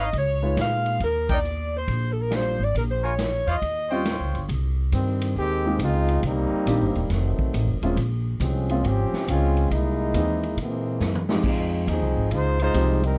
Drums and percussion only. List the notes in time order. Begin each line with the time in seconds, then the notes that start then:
0.13 kick, ride
0.57 snare, hi-hat pedal, ride
0.86 ride
1.00 kick, ride
1.29 kick, ride
1.44 hi-hat pedal
1.88 kick, ride
2.31 snare, hi-hat pedal, ride
2.75 kick, ride
3.18 snare, hi-hat pedal, ride
3.47 ride
3.62 kick, ride
4.05 snare, hi-hat pedal, ride
4.35 ride
4.49 kick, ride
4.92 kick, hi-hat pedal, ride
5.21 ride
5.36 kick
5.79 kick, hi-hat pedal, ride
6.08 ride
6.23 kick, ride
6.67 kick, hi-hat pedal, ride
6.95 ride
7.10 kick, snare, ride
7.39 kick
7.54 kick, hi-hat pedal, ride
7.83 ride
7.97 kick, ride
8.40 kick, hi-hat pedal, ride
8.69 ride
8.84 kick, ride
9.13 snare
9.28 kick, hi-hat pedal, ride
9.57 ride
9.71 kick, ride
10.14 kick, hi-hat pedal, ride
10.43 ride
10.57 kick, ride
11.00 snare, hi-hat pedal
11.15 floor tom
11.29 snare
11.44 kick, crash
11.87 kick, hi-hat pedal, ride
12.31 kick, ride
12.59 ride
12.74 kick, hi-hat pedal, ride
13.03 ride